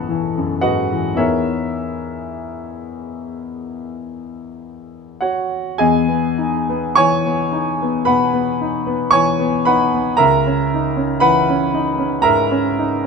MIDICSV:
0, 0, Header, 1, 2, 480
1, 0, Start_track
1, 0, Tempo, 1138520
1, 496, Time_signature, 4, 2, 24, 8
1, 1466, Tempo, 1165049
1, 2906, Tempo, 1075269
1, 4346, Tempo, 1030928
1, 5681, End_track
2, 0, Start_track
2, 0, Title_t, "Grand piano"
2, 0, Program_c, 0, 0
2, 0, Control_c, 0, 64, 127
2, 0, Note_on_c, 0, 42, 42
2, 0, Note_on_c, 0, 44, 34
2, 0, Note_on_c, 0, 52, 44
2, 0, Note_on_c, 0, 59, 46
2, 0, Note_on_c, 0, 69, 64
2, 0, Note_on_c, 0, 73, 46
2, 0, Note_on_c, 0, 75, 62
2, 0, Note_on_c, 0, 78, 67
2, 0, Note_on_c, 0, 81, 82
2, 0, Note_on_c, 0, 85, 60
2, 37, Note_off_c, 0, 52, 0
2, 37, Note_on_c, 0, 52, 43
2, 100, Note_off_c, 0, 59, 0
2, 158, Note_off_c, 0, 42, 0
2, 158, Note_on_c, 0, 42, 42
2, 217, Note_off_c, 0, 52, 0
2, 241, Note_off_c, 0, 75, 0
2, 242, Note_off_c, 0, 69, 0
2, 242, Note_off_c, 0, 78, 0
2, 258, Note_off_c, 0, 81, 0
2, 259, Note_on_c, 0, 75, 55
2, 259, Note_on_c, 0, 78, 73
2, 261, Note_on_c, 0, 71, 54
2, 263, Note_on_c, 0, 66, 57
2, 271, Note_off_c, 0, 44, 0
2, 271, Note_on_c, 0, 44, 33
2, 337, Note_off_c, 0, 42, 0
2, 382, Note_off_c, 0, 44, 0
2, 389, Note_on_c, 0, 52, 38
2, 480, Note_off_c, 0, 52, 0
2, 480, Note_off_c, 0, 75, 0
2, 481, Note_off_c, 0, 71, 0
2, 481, Note_on_c, 0, 40, 44
2, 482, Note_off_c, 0, 66, 0
2, 486, Note_on_c, 0, 52, 34
2, 489, Note_on_c, 0, 59, 34
2, 490, Note_on_c, 0, 63, 31
2, 492, Note_on_c, 0, 76, 68
2, 495, Note_off_c, 0, 73, 0
2, 495, Note_on_c, 0, 73, 52
2, 496, Note_off_c, 0, 78, 0
2, 496, Note_on_c, 0, 68, 33
2, 496, Note_on_c, 0, 70, 49
2, 504, Control_c, 0, 64, 0
2, 506, Note_off_c, 0, 85, 0
2, 581, Control_c, 0, 64, 127
2, 2165, Note_off_c, 0, 73, 0
2, 2166, Note_off_c, 0, 70, 0
2, 2178, Note_on_c, 0, 78, 60
2, 2180, Note_off_c, 0, 76, 0
2, 2181, Note_on_c, 0, 73, 48
2, 2183, Note_on_c, 0, 66, 47
2, 2397, Note_off_c, 0, 40, 0
2, 2399, Note_off_c, 0, 52, 0
2, 2401, Note_off_c, 0, 59, 0
2, 2402, Note_off_c, 0, 63, 0
2, 2404, Note_off_c, 0, 68, 0
2, 2404, Note_off_c, 0, 73, 0
2, 2405, Note_off_c, 0, 66, 0
2, 2416, Note_on_c, 0, 80, 81
2, 2418, Note_on_c, 0, 68, 63
2, 2419, Note_off_c, 0, 78, 0
2, 2419, Note_on_c, 0, 75, 64
2, 2424, Note_on_c, 0, 40, 60
2, 2428, Control_c, 0, 64, 0
2, 2509, Control_c, 0, 64, 127
2, 2539, Note_on_c, 0, 59, 39
2, 2663, Note_on_c, 0, 63, 41
2, 2737, Note_off_c, 0, 59, 0
2, 2790, Note_on_c, 0, 59, 48
2, 2859, Note_off_c, 0, 63, 0
2, 2889, Note_off_c, 0, 68, 0
2, 2890, Note_off_c, 0, 75, 0
2, 2895, Note_off_c, 0, 80, 0
2, 2899, Note_on_c, 0, 85, 99
2, 2902, Note_on_c, 0, 80, 83
2, 2904, Note_on_c, 0, 73, 81
2, 2908, Note_on_c, 0, 52, 46
2, 2986, Note_off_c, 0, 59, 0
2, 3032, Note_on_c, 0, 59, 45
2, 3108, Note_off_c, 0, 52, 0
2, 3151, Note_on_c, 0, 63, 44
2, 3228, Note_off_c, 0, 59, 0
2, 3284, Note_on_c, 0, 59, 47
2, 3346, Note_off_c, 0, 63, 0
2, 3375, Note_off_c, 0, 80, 0
2, 3377, Note_off_c, 0, 73, 0
2, 3380, Note_off_c, 0, 40, 0
2, 3387, Note_on_c, 0, 83, 83
2, 3389, Note_on_c, 0, 71, 62
2, 3392, Note_off_c, 0, 85, 0
2, 3395, Note_on_c, 0, 78, 64
2, 3398, Note_on_c, 0, 47, 42
2, 3470, Note_off_c, 0, 59, 0
2, 3513, Note_on_c, 0, 59, 43
2, 3586, Note_off_c, 0, 47, 0
2, 3637, Note_on_c, 0, 63, 44
2, 3702, Note_off_c, 0, 59, 0
2, 3751, Note_on_c, 0, 59, 45
2, 3823, Note_off_c, 0, 63, 0
2, 3846, Note_off_c, 0, 71, 0
2, 3850, Note_off_c, 0, 78, 0
2, 3858, Note_on_c, 0, 85, 99
2, 3864, Note_off_c, 0, 83, 0
2, 3865, Note_on_c, 0, 73, 75
2, 3865, Note_on_c, 0, 80, 68
2, 3873, Note_on_c, 0, 52, 48
2, 3940, Note_off_c, 0, 59, 0
2, 3986, Note_on_c, 0, 59, 51
2, 4061, Note_off_c, 0, 52, 0
2, 4088, Note_off_c, 0, 73, 0
2, 4088, Note_off_c, 0, 80, 0
2, 4102, Note_off_c, 0, 85, 0
2, 4102, Note_on_c, 0, 83, 84
2, 4107, Note_on_c, 0, 71, 65
2, 4108, Note_on_c, 0, 78, 65
2, 4114, Note_on_c, 0, 63, 45
2, 4178, Note_off_c, 0, 59, 0
2, 4232, Note_on_c, 0, 59, 46
2, 4302, Note_off_c, 0, 63, 0
2, 4330, Note_off_c, 0, 71, 0
2, 4331, Note_off_c, 0, 78, 0
2, 4332, Note_on_c, 0, 82, 100
2, 4337, Note_on_c, 0, 70, 75
2, 4339, Note_on_c, 0, 76, 77
2, 4343, Note_on_c, 0, 37, 63
2, 4344, Note_off_c, 0, 83, 0
2, 4350, Note_off_c, 0, 59, 0
2, 4353, Control_c, 0, 64, 0
2, 4424, Control_c, 0, 64, 127
2, 4470, Note_on_c, 0, 61, 45
2, 4598, Note_on_c, 0, 63, 45
2, 4666, Note_off_c, 0, 61, 0
2, 4705, Note_on_c, 0, 61, 47
2, 4789, Note_off_c, 0, 63, 0
2, 4810, Note_off_c, 0, 70, 0
2, 4811, Note_off_c, 0, 76, 0
2, 4813, Note_on_c, 0, 83, 94
2, 4817, Note_on_c, 0, 71, 78
2, 4819, Note_on_c, 0, 78, 76
2, 4822, Note_on_c, 0, 52, 48
2, 4826, Note_off_c, 0, 82, 0
2, 4900, Note_off_c, 0, 61, 0
2, 4949, Note_on_c, 0, 61, 50
2, 5017, Note_off_c, 0, 52, 0
2, 5064, Note_on_c, 0, 63, 51
2, 5139, Note_off_c, 0, 61, 0
2, 5178, Note_on_c, 0, 61, 47
2, 5256, Note_off_c, 0, 63, 0
2, 5280, Note_off_c, 0, 71, 0
2, 5281, Note_off_c, 0, 78, 0
2, 5286, Note_off_c, 0, 37, 0
2, 5287, Note_on_c, 0, 82, 101
2, 5293, Note_on_c, 0, 70, 78
2, 5293, Note_on_c, 0, 76, 76
2, 5296, Note_off_c, 0, 83, 0
2, 5300, Note_on_c, 0, 44, 49
2, 5374, Note_off_c, 0, 61, 0
2, 5423, Note_on_c, 0, 61, 54
2, 5495, Note_off_c, 0, 44, 0
2, 5550, Note_on_c, 0, 63, 51
2, 5617, Note_off_c, 0, 61, 0
2, 5681, Note_off_c, 0, 63, 0
2, 5681, Note_off_c, 0, 70, 0
2, 5681, Note_off_c, 0, 76, 0
2, 5681, Note_off_c, 0, 82, 0
2, 5681, End_track
0, 0, End_of_file